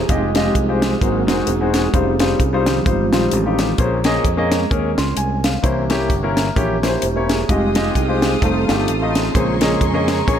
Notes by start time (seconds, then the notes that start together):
0.09 F1 F3 G#3 C4 D#4 F4 G4 D#5, kick, closed hi-hat
0.35 G#3 F4 G4 D#5, snare, closed hi-hat
0.55 C2 C4 D#4 G#4, kick, closed hi-hat
0.69 G#3 F4 G4 C5
0.82 snare, closed hi-hat
1.00 G#1 G#2 F#3 G#3 A#3 C4 D#4 F#4 A#4 C5, kick, closed hi-hat
1.28 F1 G#3 D#4 F#4 C5, snare, closed hi-hat
1.47 E1 C4 D#4 G#4, closed hi-hat
1.61 G#3 D#4 F#4 C5
1.74 snare, closed hi-hat
1.93 F1 G3 C4 C#4 D#4 F4 G#4 C5, kick, closed hi-hat
2.20 G3 D#4 F4 C5, snare, closed hi-hat
2.40 C2, kick, closed hi-hat
2.53 G3 D#4 F4 C5
2.66 D#3 F3 G3 C4, snare, closed hi-hat
2.85 G1 G3 G#3 C4 D#4 F4 C5, kick, closed hi-hat
3.12 A#1 G3 D#4 F4 C5, snare, closed hi-hat
3.31 A1 C4 C#4 G4, closed hi-hat
3.45 G3 D#4 F4 G4
3.59 snare, closed hi-hat
3.78 A#1 A#2 A#3 C#4 G#4 C5, kick, closed hi-hat
4.04 A#3 C#4 G#4 D#5, snare, closed hi-hat
4.25 F2, kick, closed hi-hat
4.37 A#3 C#4 G#4 D#5
4.51 G#3 C4 C#4, snare, closed hi-hat
4.71 D#2 A#3 C#4 G#4 A#4, kick, closed hi-hat
4.98 C#2 C6, snare, closed hi-hat
5.17 C2 G#5, closed hi-hat
5.44 F5, snare, closed hi-hat
5.63 C2 C3 E3 A#3 C#4 E4 C5, kick, closed hi-hat
5.90 A#3 C#4 E4 G4, snare, closed hi-hat
6.10 G1, kick, closed hi-hat
6.23 A#3 C#4 E4 A#4
6.37 snare, closed hi-hat
6.56 A#1 E3 A#3 C#4 E4 G4, kick, closed hi-hat
6.83 A#3 C#4 E4 G4 C5, snare, closed hi-hat
7.02 E1, closed hi-hat
7.16 A#3 C#4 E4 C#5
7.29 G#4, snare, closed hi-hat
7.48 F1 G3 G#3 C4 D#4 F4 G4 D#5 F5 G5 D#6, kick, closed hi-hat
7.75 G#3 F4 G4 D#5, snare, closed hi-hat
7.95 C2 C4 D#4 G#4, kick, closed hi-hat
8.08 G#3 F4 G4 C5
8.22 snare, closed hi-hat
8.41 F1 G3 A3 C4 D#4 F4 A4 C5 A5 C6, kick, closed hi-hat
8.68 G1 A3 D#4 F4 G4, snare, closed hi-hat
8.79 C4 D#4 A4
8.88 A1, closed hi-hat
9.02 A3 D#4 F4 D#5
9.15 C4 C#4 G#4, snare, closed hi-hat
9.34 A#1 A#2 C#3 G#3 A#3 C4 C#4 G#4 C5 G#5 A#5 C#6, kick, closed hi-hat
9.61 A#3 C#4 G#4 D#5, snare, closed hi-hat
9.81 F2, kick, closed hi-hat
9.94 A#3 C#4 G#4 D#5
10.08 C#3 G#3 C4, snare, closed hi-hat
10.27 A#1 A#3 C#4 G#4 C#5, kick, closed hi-hat